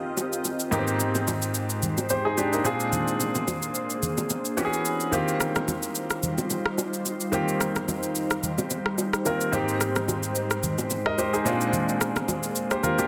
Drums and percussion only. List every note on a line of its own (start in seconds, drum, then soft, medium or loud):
0.17 high bongo medium
0.17 shaker medium
0.33 shaker soft
0.45 high bongo soft
0.45 shaker medium
0.60 shaker medium
0.72 low conga medium
0.72 shaker medium
0.88 shaker soft
1.00 low bongo medium
1.00 shaker loud
1.15 low bongo medium
1.15 shaker soft
1.28 high bongo medium
1.28 low conga medium
1.28 shaker medium
1.42 shaker medium
1.55 shaker medium
1.70 shaker medium
1.83 low conga medium
1.83 shaker medium
1.98 high bongo soft
1.98 low bongo medium
1.98 shaker medium
2.10 low bongo medium
2.10 shaker medium
2.38 high bongo medium
2.38 shaker medium
2.53 shaker soft
2.65 high bongo soft
2.65 shaker medium
2.80 shaker medium
2.92 low conga medium
2.92 shaker medium
3.08 shaker soft
3.20 low bongo medium
3.20 shaker medium
3.35 low bongo medium
3.35 shaker soft
3.48 high bongo medium
3.48 low conga medium
3.48 shaker medium
3.62 shaker medium
3.75 shaker medium
3.90 shaker medium
4.03 low conga medium
4.03 shaker medium
4.18 high bongo soft
4.18 low bongo medium
4.18 shaker medium
4.30 low bongo medium
4.30 shaker medium
4.45 shaker soft
4.58 high bongo medium
4.58 shaker medium
4.73 shaker soft
4.85 shaker medium
5.00 shaker medium
5.12 low conga medium
5.12 shaker medium
5.28 shaker soft
5.40 cross-stick medium
5.40 low bongo medium
5.40 shaker medium
5.56 cross-stick loud
5.56 low bongo medium
5.56 shaker soft
5.68 high bongo medium
5.68 low conga medium
5.68 shaker medium
5.83 shaker medium
5.95 shaker medium
6.10 cross-stick medium
6.10 shaker medium
6.23 low conga medium
6.23 shaker medium
6.38 high bongo soft
6.38 low bongo medium
6.38 shaker medium
6.50 low bongo medium
6.50 shaker medium
6.66 cross-stick medium
6.78 high bongo medium
6.78 shaker medium
6.94 shaker soft
7.05 high bongo soft
7.05 shaker medium
7.21 shaker medium
7.33 low conga medium
7.33 shaker medium
7.48 shaker soft
7.61 cross-stick medium
7.61 low bongo medium
7.61 shaker loud
7.76 cross-stick loud
7.76 low bongo medium
7.76 shaker medium
7.88 high bongo medium
7.88 low conga medium
7.88 shaker medium
8.03 shaker medium
8.15 shaker medium
8.31 cross-stick medium
8.31 shaker medium
8.43 low conga medium
8.43 shaker medium
8.58 high bongo medium
8.58 low bongo medium
8.58 shaker medium
8.70 low bongo medium
8.70 shaker medium
8.86 cross-stick medium
8.98 high bongo medium
8.98 shaker medium
9.13 cross-stick medium
9.13 shaker soft
9.26 high bongo soft
9.26 shaker medium
9.41 shaker medium
9.53 low conga medium
9.53 shaker medium
9.69 shaker soft
9.81 cross-stick medium
9.81 low bongo medium
9.81 shaker loud
9.96 cross-stick medium
9.96 low bongo medium
9.96 shaker soft
10.08 high bongo medium
10.08 low conga medium
10.08 shaker medium
10.23 shaker medium
10.35 shaker medium
10.51 cross-stick medium
10.51 shaker medium
10.63 low conga medium
10.63 shaker medium
10.78 high bongo soft
10.78 low bongo medium
10.78 shaker medium
10.90 low bongo medium
10.90 shaker medium
11.06 cross-stick medium
11.18 high bongo medium
11.18 shaker medium
11.34 shaker soft
11.46 high bongo soft
11.46 shaker medium
11.61 shaker medium
11.73 low conga medium
11.73 shaker medium
11.89 shaker soft
12.01 cross-stick medium
12.01 low bongo medium
12.01 shaker loud
12.16 cross-stick medium
12.16 low bongo medium
12.16 shaker soft
12.28 high bongo medium
12.28 low conga medium
12.28 shaker medium
12.43 shaker medium
12.56 shaker medium
12.71 cross-stick medium
12.71 shaker medium
12.83 low conga medium
12.83 shaker medium
12.99 high bongo soft
12.99 low bongo medium
12.99 shaker medium